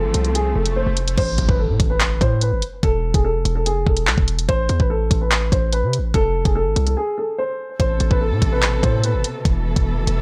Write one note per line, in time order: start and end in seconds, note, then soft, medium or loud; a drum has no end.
0.00 0.14 G#1 loud
0.00 1.16 F3 medium
0.00 1.16 C4 medium
0.00 0.23 A4 medium
0.00 1.14 A4 medium
0.00 swell medium
0.14 0.54 C2 loud
0.14 closed hi-hat medium
0.24 0.34 A4 medium
0.24 closed hi-hat soft
0.35 0.54 G#4 medium
0.35 closed hi-hat medium
0.56 0.85 F1 loud
0.56 0.75 A4 medium
0.66 closed hi-hat medium
0.76 1.15 C5 medium
0.87 1.16 F1 loud
0.97 closed hi-hat medium
1.08 closed hi-hat medium
1.18 1.37 A1 loud
1.18 1.47 C5 loud
1.18 kick loud
1.18 closed hi-hat medium
1.18 crash medium
1.18 impact medium
1.38 1.48 A1 loud
1.38 closed hi-hat medium
1.49 1.71 A1 loud
1.49 1.58 B4 medium
1.49 kick loud
1.59 1.88 A4 medium
1.69 1.79 A2 loud
1.80 2.19 A1 loud
1.80 kick medium
1.80 closed hi-hat medium
1.90 2.19 B4 medium
2.00 clap loud
2.00 closed hi-hat medium
2.21 2.54 A2 loud
2.21 2.41 C5 medium
2.21 kick medium
2.21 closed hi-hat medium
2.41 2.61 B4 medium
2.41 closed hi-hat medium
2.52 2.62 G#1 loud
2.62 closed hi-hat medium
2.83 3.13 E1 loud
2.83 3.12 A4 loud
2.83 kick loud
2.83 closed hi-hat medium
3.14 3.36 E1 loud
3.14 3.24 G#4 medium
3.14 kick loud
3.14 closed hi-hat medium
3.24 3.54 A4 medium
3.35 3.45 F1 loud
3.45 3.67 E1 loud
3.45 closed hi-hat medium
3.55 3.65 A4 medium
3.66 3.86 F1 loud
3.66 3.85 G#4 medium
3.66 closed hi-hat medium
3.87 4.09 E1 loud
3.87 4.45 A4 medium
3.87 kick loud
3.97 closed hi-hat medium
4.07 4.17 B1 loud
4.07 clap loud
4.18 4.47 E1 loud
4.18 kick medium
4.28 closed hi-hat medium
4.39 closed hi-hat medium
4.49 4.69 A1 loud
4.49 4.78 C5 loud
4.49 kick loud
4.49 closed hi-hat medium
4.69 4.79 E2 loud
4.69 closed hi-hat medium
4.80 5.10 A1 loud
4.80 4.89 B4 medium
4.80 kick loud
4.90 5.19 A4 medium
5.11 5.50 A1 loud
5.11 kick loud
5.11 closed hi-hat medium
5.21 5.50 B4 medium
5.32 clap loud
5.32 closed hi-hat medium
5.52 5.85 A1 loud
5.52 5.72 C5 medium
5.52 kick loud
5.52 closed hi-hat medium
5.73 5.92 B4 medium
5.73 closed hi-hat loud
5.83 6.00 C3 medium
5.93 closed hi-hat medium
5.99 6.13 A1 loud
6.14 6.44 F1 loud
6.14 6.43 A4 loud
6.14 kick loud
6.14 closed hi-hat medium
6.45 6.67 F1 loud
6.45 6.55 G#4 medium
6.45 kick loud
6.45 closed hi-hat medium
6.55 6.85 A4 medium
6.66 6.76 G#1 loud
6.76 6.96 C2 loud
6.76 closed hi-hat medium
6.86 6.96 A4 medium
6.86 closed hi-hat soft
6.97 7.16 G#4 medium
7.18 7.37 A4 medium
7.38 7.77 C5 medium
7.80 8.00 A1 loud
7.80 10.22 B2 medium
7.80 9.44 C3 medium
7.80 9.44 A4 medium
7.80 8.09 C5 medium
7.80 kick loud
7.80 closed hi-hat medium
8.00 8.10 A1 loud
8.00 closed hi-hat medium
8.11 8.33 A1 loud
8.11 8.20 B4 medium
8.11 kick loud
8.21 8.50 A4 medium
8.31 8.41 A2 loud
8.42 8.82 A1 loud
8.42 kick medium
8.42 closed hi-hat medium
8.52 8.81 B4 medium
8.62 clap loud
8.62 closed hi-hat medium
8.83 9.16 A2 loud
8.83 9.03 C5 medium
8.83 kick loud
8.83 closed hi-hat medium
9.04 9.23 B4 medium
9.04 closed hi-hat loud
9.14 9.24 G#1 loud
9.24 closed hi-hat medium
9.45 9.75 E1 loud
9.45 10.22 E3 medium
9.45 10.22 A4 medium
9.45 kick loud
9.45 closed hi-hat medium
9.76 9.98 E1 loud
9.76 kick loud
9.76 closed hi-hat medium
9.97 10.07 F1 loud
10.07 10.22 E1 loud
10.07 closed hi-hat medium